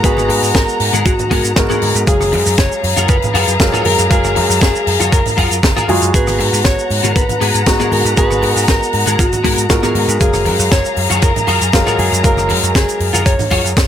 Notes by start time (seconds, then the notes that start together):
Already playing: F#5 A#5
0.03 G#1 G#3 B3 F#4 G#4 B4, kick, closed hi-hat, cabasa, shaker
0.17 muted clean electric guitar stroke, cross-stick, high conga, cabasa, shaker
0.29 G#2, muted clean electric guitar stroke, open hi-hat, cabasa
0.42 G#2, muted clean electric guitar stroke, cabasa, shaker
0.54 G#1 A#4, kick, snare, closed hi-hat, high conga, cabasa, shaker
0.68 cabasa, shaker
0.80 G#2, open hi-hat, cabasa
0.93 G#2 B3 F#4 G#4 A#4, closed hi-hat, high conga, cabasa, shaker
1.05 G#1 F#4, kick, closed hi-hat, cabasa, shaker
1.19 muted picked electric bass stroke, closed hi-hat, low conga, cabasa, shaker
1.30 G#2 B3 F#4 G#4 A#4, kick, open hi-hat, high conga, cabasa
1.44 G#2, closed hi-hat, cabasa, shaker
1.56 G#1 G#3 B3 F#4 A#4, kick, cross-stick, snare, closed hi-hat, cabasa, shaker
1.69 B3 F#4 G#4 A#4, cross-stick, low conga, cabasa, shaker
1.82 G#2, open hi-hat, high conga, cabasa
1.95 G#2, closed hi-hat, cabasa, shaker
2.06 F#1 F#3 G#3 G#4 F5 A#5, kick, closed hi-hat, cabasa, shaker
2.20 muted clean electric guitar stroke, cross-stick, open hi-hat, high conga, cabasa, shaker
2.32 F#2, muted clean electric guitar stroke, open hi-hat, cabasa
2.45 F#2, muted clean electric guitar stroke, cabasa, shaker
2.58 F#1 C#5, kick, snare, closed hi-hat, high conga, cabasa, shaker
2.72 cabasa, shaker
2.84 F#2, open hi-hat, cabasa
2.96 F#2 F4 F#4 G#4 A#4, closed hi-hat, high bongo, high conga, cabasa, shaker
3.08 F#1 B4, kick, closed hi-hat, cabasa, shaker
3.22 closed hi-hat, low conga, cabasa, shaker
3.34 F#2 F4 F#4 G#4 A#4, cross-stick, open hi-hat, high conga, cabasa
3.48 F#2, closed hi-hat, shaker
3.60 F#1 F#3 G#3 A#4 F5, kick, snare, closed hi-hat, cabasa, shaker
3.72 F4 F#4 G#4 A#4, cross-stick, low conga, cabasa, shaker
3.85 F#2 A#4, open hi-hat, high conga, cabasa
3.98 F#2, closed hi-hat, high bongo, cabasa, shaker
4.10 F#1 F#3 G#3 G#4 A#4 F5, kick, closed hi-hat, cabasa, shaker
4.23 muted clean electric guitar stroke, cross-stick, high conga, cabasa, shaker
4.35 F#2, muted clean electric guitar stroke, open hi-hat, cabasa
4.49 F#2, muted clean electric guitar stroke, cabasa, shaker
4.61 F#1 G#4, kick, snare, closed hi-hat, high conga, cabasa, shaker
4.75 cabasa, shaker
4.87 F#2, open hi-hat, cabasa
5.00 F#2 F4 F#4 G#4 C#5, closed hi-hat, high conga, cabasa, shaker
5.12 F#1 A#4, kick, closed hi-hat, cabasa, shaker
5.25 muted picked electric bass stroke, open hi-hat, low conga, cabasa, shaker
5.37 F#2 F4 F#4 G#4 A#4, kick, open hi-hat, high conga, cabasa
5.51 F#2, closed hi-hat, shaker
5.63 F#1, kick, cross-stick, snare, closed hi-hat, cabasa, shaker
5.76 F4 F#4 G#4 A#4, cross-stick, low conga, cabasa, shaker
5.88 F#2 G#3 F4 F#4 G#4, open hi-hat, high conga, cabasa
6.02 F#2, closed hi-hat, cabasa, shaker
6.13 G#1 G#3 B3 F#4 G#4 B4 F#5 A#5, kick, closed hi-hat, cabasa, shaker
6.27 muted clean electric guitar stroke, cross-stick, open hi-hat, high conga, cabasa, shaker
6.39 G#2, muted clean electric guitar stroke, open hi-hat, cabasa
6.52 G#2, muted clean electric guitar stroke, cabasa, shaker
6.65 G#1 C#5, kick, snare, closed hi-hat, high conga, cabasa, shaker
6.78 cabasa, shaker
6.90 G#2, open hi-hat, cabasa
7.03 G#2 B3 F#4 G#4 A#4, closed hi-hat, high bongo, high conga, cabasa, shaker
7.16 G#1 B4, kick, closed hi-hat, cabasa, shaker
7.29 closed hi-hat, low conga, cabasa, shaker
7.40 G#2 B3 F#4 G#4 B4, cross-stick, open hi-hat, high conga, cabasa
7.54 G#2, closed hi-hat, cabasa, shaker
7.66 G#1 G#3 B3 F#4 A#5, kick, snare, closed hi-hat, cabasa, shaker
7.79 B3 F#4 G#4 A#4, cross-stick, low conga, cabasa, shaker
7.92 G#2 A#4, open hi-hat, high conga, cabasa
8.05 G#2, closed hi-hat, high bongo, cabasa, shaker
8.16 G#1 G#3 B3 F#4 G#4 B4, kick, closed hi-hat, cabasa, shaker
8.30 muted clean electric guitar stroke, cross-stick, high conga, cabasa, shaker
8.42 G#2, muted clean electric guitar stroke, open hi-hat, cabasa
8.53 G#2 A#4, muted clean electric guitar stroke
8.57 shaker
8.68 G#1 A#4, kick, snare, closed hi-hat, high conga, cabasa, shaker
8.82 cabasa, shaker
8.93 G#2, open hi-hat, cabasa
9.06 G#2 B3 F#4 G#4 A#4, closed hi-hat, high conga, cabasa, shaker
9.19 G#1 F#4, kick, closed hi-hat, cabasa, shaker
9.32 muted picked electric bass stroke, closed hi-hat, low conga, cabasa, shaker
9.44 G#2 B3 F#4 G#4 A#4, kick, open hi-hat, high conga, cabasa
9.57 G#2, closed hi-hat, cabasa, shaker
9.69 G#1 G#3 B3 F4 F#4 A#4, kick, cross-stick, snare, closed hi-hat, cabasa, shaker
9.83 B3 F#4 G#4 A#4, cross-stick, low conga, cabasa, shaker
9.95 G#2, open hi-hat, high conga, cabasa
10.08 G#2, closed hi-hat, cabasa, shaker
10.20 F#1 F#3 G#3 G#4 A#4 F5 A#5, kick, closed hi-hat, cabasa, shaker
10.33 muted clean electric guitar stroke, cross-stick, open hi-hat, high conga, cabasa, shaker
10.45 F#2, muted clean electric guitar stroke, open hi-hat, cabasa
10.59 F#2, muted clean electric guitar stroke, shaker
10.71 F#1 C#5, kick, snare, closed hi-hat, high conga, cabasa, shaker
10.85 cabasa, shaker
10.97 F#2, open hi-hat, cabasa
11.10 F#2 F4 F#4 G#4 C#5, closed hi-hat, high bongo, high conga, cabasa, shaker
11.22 F#1 A#4, kick, closed hi-hat, cabasa, shaker
11.35 closed hi-hat, low conga, cabasa, shaker
11.47 F#2 F4 F#4 G#4 A#4, cross-stick, open hi-hat, high conga, cabasa
11.61 F#2, closed hi-hat, cabasa, shaker
11.72 F#1 F#3 G#3 A#4 F5, kick, snare, closed hi-hat, cabasa, shaker
11.86 F4 F#4 G#4 A#4, cross-stick, low conga, cabasa, shaker
11.98 F#2 G#4, open hi-hat, high conga, cabasa
12.12 F#2, closed hi-hat, high bongo, cabasa, shaker
12.23 F#1 F#3 G#3 A#4 F5, kick, closed hi-hat, cabasa, shaker
12.37 muted clean electric guitar stroke, cross-stick, high conga, cabasa, shaker
12.49 F#2, muted clean electric guitar stroke, open hi-hat, cabasa
12.62 F#2, muted clean electric guitar stroke, closed hi-hat, shaker
12.75 F#1 G#4, kick, snare, closed hi-hat, high conga, cabasa, shaker
12.88 closed hi-hat, cabasa, shaker
13.00 F#2, open hi-hat, cabasa
13.13 F#2 F4 F#4 G#4 A#4, closed hi-hat, high bongo, high conga, cabasa, shaker
13.26 F#1 C#5, kick, closed hi-hat, cabasa, shaker
13.39 muted picked electric bass stroke, open hi-hat, low conga, cabasa, shaker
13.50 F#2 F4 F#4 G#4 C#5, kick, open hi-hat, high bongo, high conga, cabasa
13.64 F#2, closed hi-hat, cabasa, shaker
13.77 F#1, kick, cross-stick, snare, closed hi-hat, cabasa, shaker